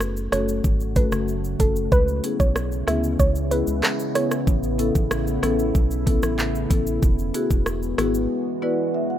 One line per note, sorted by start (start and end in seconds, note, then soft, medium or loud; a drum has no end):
0.00 0.28 F#1 medium
0.00 6.99 C#3 medium
0.00 1.90 F#3 medium
0.00 1.90 A3 medium
0.00 1.90 F#4 medium
0.00 cross-stick medium
0.00 shaker medium
0.17 shaker medium
0.32 0.61 F#1 loud
0.32 0.45 A3 medium
0.32 0.45 C#4 medium
0.32 0.45 F#4 medium
0.32 0.46 A4 medium
0.32 0.54 C#5 medium
0.32 cross-stick medium
0.32 closed hi-hat medium
0.32 shaker soft
0.48 shaker medium
0.64 1.08 G#1 loud
0.64 kick medium
0.64 shaker medium
0.80 shaker medium
0.96 1.09 A3 medium
0.96 1.09 C#4 medium
0.96 1.09 F#4 medium
0.96 1.09 A4 medium
0.96 1.07 B4 medium
0.96 kick loud
0.96 closed hi-hat medium
0.96 shaker medium
1.12 1.56 F#1 medium
1.12 cross-stick medium
1.12 shaker medium
1.28 shaker medium
1.44 shaker medium
1.60 1.89 F#1 loud
1.60 1.73 A3 medium
1.60 1.73 C#4 medium
1.60 1.73 F#4 medium
1.60 1.71 A4 medium
1.60 1.73 A4 medium
1.60 kick loud
1.60 closed hi-hat medium
1.60 shaker medium
1.76 shaker medium
1.92 2.21 C#2 loud
1.92 4.45 G#3 medium
1.92 6.99 B3 medium
1.92 4.45 E4 medium
1.92 2.14 B4 loud
1.92 kick loud
1.92 shaker medium
2.08 shaker soft
2.24 2.37 B3 medium
2.24 2.37 C#4 medium
2.24 2.37 E4 medium
2.24 2.37 G#4 medium
2.24 closed hi-hat medium
2.24 shaker medium
2.40 2.84 B1 medium
2.40 2.62 C#5 medium
2.40 kick medium
2.40 shaker medium
2.56 cross-stick medium
2.56 shaker medium
2.72 shaker soft
2.87 3.17 D2 loud
2.87 3.00 B3 medium
2.87 3.00 C#4 medium
2.87 3.01 E4 medium
2.87 3.01 G#4 medium
2.87 3.10 E5 medium
2.87 cross-stick medium
2.87 closed hi-hat medium
2.87 shaker soft
3.04 shaker medium
3.19 3.63 C#2 loud
3.19 3.31 C#5 medium
3.19 kick medium
3.19 shaker medium
3.36 shaker soft
3.51 3.64 B3 medium
3.51 3.64 C#4 medium
3.51 3.64 E4 medium
3.51 3.65 G#4 medium
3.51 3.62 B4 medium
3.51 closed hi-hat medium
3.51 shaker soft
3.67 3.82 C#2 medium
3.67 shaker medium
3.83 cross-stick medium
3.83 clap medium
3.83 shaker medium
4.00 shaker medium
4.15 4.28 B3 medium
4.15 4.28 C#4 medium
4.15 4.28 E4 medium
4.15 4.28 G#4 medium
4.15 4.26 C#5 medium
4.15 cross-stick medium
4.15 closed hi-hat medium
4.15 shaker medium
4.31 cross-stick medium
4.31 shaker medium
4.47 4.91 A1 loud
4.47 7.00 A3 medium
4.47 7.00 E4 medium
4.47 kick loud
4.47 shaker medium
4.63 shaker soft
4.79 4.92 B3 medium
4.79 4.92 C#4 medium
4.79 4.92 E4 medium
4.79 4.92 A4 loud
4.79 closed hi-hat medium
4.79 shaker medium
4.95 5.39 A1 medium
4.95 kick medium
4.95 shaker medium
5.11 cross-stick medium
5.11 shaker medium
5.27 shaker medium
5.43 5.72 A1 medium
5.43 5.56 B3 medium
5.43 5.56 C#4 medium
5.43 5.56 E4 medium
5.43 5.56 A4 loud
5.43 cross-stick medium
5.43 closed hi-hat medium
5.43 shaker soft
5.59 shaker medium
5.75 6.19 B1 loud
5.75 kick loud
5.75 shaker medium
5.91 shaker medium
6.07 6.19 B3 medium
6.07 6.20 C#4 medium
6.07 6.20 E4 medium
6.07 6.20 A4 loud
6.07 kick loud
6.07 closed hi-hat medium
6.07 shaker soft
6.23 6.67 A1 medium
6.23 cross-stick medium
6.23 shaker medium
6.39 clap medium
6.39 shaker medium
6.55 shaker medium
6.70 7.00 A1 loud
6.70 6.83 B3 medium
6.70 6.83 C#4 medium
6.70 6.84 E4 medium
6.70 6.84 A4 loud
6.70 kick loud
6.70 closed hi-hat medium
6.70 shaker medium
6.87 shaker medium
7.02 7.32 E1 loud
7.02 9.19 E3 medium
7.02 9.19 G#3 medium
7.02 9.19 B3 medium
7.02 9.19 F#4 medium
7.02 kick loud
7.02 shaker medium
7.19 shaker medium
7.34 7.47 B3 medium
7.34 7.47 E4 medium
7.34 7.47 F#4 medium
7.34 7.48 G#4 loud
7.34 closed hi-hat medium
7.34 shaker medium
7.51 7.94 E1 medium
7.51 kick medium
7.51 shaker medium
7.66 cross-stick medium
7.66 shaker medium
7.83 shaker medium
7.98 8.27 G#1 loud
7.98 8.11 B3 medium
7.98 8.11 E4 medium
7.98 8.11 F#4 medium
7.98 8.12 G#4 loud
7.98 cross-stick loud
7.98 closed hi-hat medium
7.98 shaker soft
8.15 shaker medium
8.62 8.75 B3 medium
8.62 8.75 E4 medium
8.62 8.75 F#4 medium
8.62 8.75 B4 loud
8.62 8.92 D5 medium
8.94 9.09 E5 medium
9.10 9.19 F#5 medium